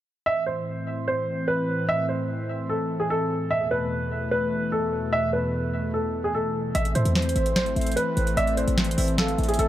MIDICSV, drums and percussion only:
0, 0, Header, 1, 2, 480
1, 0, Start_track
1, 0, Key_signature, 0, "minor"
1, 0, Tempo, 405405
1, 311, Time_signature, 4, 2, 24, 8
1, 11465, End_track
2, 0, Start_track
2, 0, Title_t, "Drums"
2, 7991, Note_on_c, 9, 42, 86
2, 8109, Note_off_c, 9, 42, 0
2, 8112, Note_on_c, 9, 42, 44
2, 8231, Note_off_c, 9, 42, 0
2, 8231, Note_on_c, 9, 42, 82
2, 8349, Note_off_c, 9, 42, 0
2, 8352, Note_on_c, 9, 42, 59
2, 8470, Note_off_c, 9, 42, 0
2, 8471, Note_on_c, 9, 38, 91
2, 8471, Note_on_c, 9, 42, 54
2, 8551, Note_off_c, 9, 42, 0
2, 8551, Note_on_c, 9, 42, 71
2, 8589, Note_off_c, 9, 38, 0
2, 8631, Note_off_c, 9, 42, 0
2, 8631, Note_on_c, 9, 42, 86
2, 8710, Note_off_c, 9, 42, 0
2, 8710, Note_on_c, 9, 42, 80
2, 8829, Note_off_c, 9, 42, 0
2, 8831, Note_on_c, 9, 42, 55
2, 8949, Note_off_c, 9, 42, 0
2, 8951, Note_on_c, 9, 42, 81
2, 8952, Note_on_c, 9, 38, 122
2, 9069, Note_off_c, 9, 42, 0
2, 9070, Note_off_c, 9, 38, 0
2, 9072, Note_on_c, 9, 42, 60
2, 9190, Note_off_c, 9, 42, 0
2, 9192, Note_on_c, 9, 42, 53
2, 9252, Note_off_c, 9, 42, 0
2, 9252, Note_on_c, 9, 42, 63
2, 9312, Note_off_c, 9, 42, 0
2, 9312, Note_on_c, 9, 42, 74
2, 9371, Note_off_c, 9, 42, 0
2, 9371, Note_on_c, 9, 42, 85
2, 9434, Note_off_c, 9, 42, 0
2, 9434, Note_on_c, 9, 42, 95
2, 9553, Note_off_c, 9, 42, 0
2, 9672, Note_on_c, 9, 42, 76
2, 9790, Note_off_c, 9, 42, 0
2, 9792, Note_on_c, 9, 42, 56
2, 9910, Note_off_c, 9, 42, 0
2, 9911, Note_on_c, 9, 42, 82
2, 10030, Note_off_c, 9, 42, 0
2, 10033, Note_on_c, 9, 42, 43
2, 10151, Note_off_c, 9, 42, 0
2, 10151, Note_on_c, 9, 42, 83
2, 10270, Note_off_c, 9, 42, 0
2, 10272, Note_on_c, 9, 42, 59
2, 10390, Note_off_c, 9, 42, 0
2, 10391, Note_on_c, 9, 38, 92
2, 10391, Note_on_c, 9, 42, 53
2, 10471, Note_off_c, 9, 42, 0
2, 10471, Note_on_c, 9, 42, 72
2, 10509, Note_off_c, 9, 38, 0
2, 10551, Note_off_c, 9, 42, 0
2, 10551, Note_on_c, 9, 42, 88
2, 10630, Note_on_c, 9, 46, 83
2, 10670, Note_off_c, 9, 42, 0
2, 10749, Note_off_c, 9, 46, 0
2, 10751, Note_on_c, 9, 42, 55
2, 10869, Note_off_c, 9, 42, 0
2, 10871, Note_on_c, 9, 38, 121
2, 10871, Note_on_c, 9, 42, 80
2, 10989, Note_off_c, 9, 42, 0
2, 10990, Note_off_c, 9, 38, 0
2, 10992, Note_on_c, 9, 42, 61
2, 11110, Note_off_c, 9, 42, 0
2, 11111, Note_on_c, 9, 42, 52
2, 11171, Note_off_c, 9, 42, 0
2, 11171, Note_on_c, 9, 42, 62
2, 11231, Note_off_c, 9, 42, 0
2, 11231, Note_on_c, 9, 42, 71
2, 11291, Note_off_c, 9, 42, 0
2, 11291, Note_on_c, 9, 42, 85
2, 11354, Note_off_c, 9, 42, 0
2, 11354, Note_on_c, 9, 42, 97
2, 11465, Note_off_c, 9, 42, 0
2, 11465, End_track
0, 0, End_of_file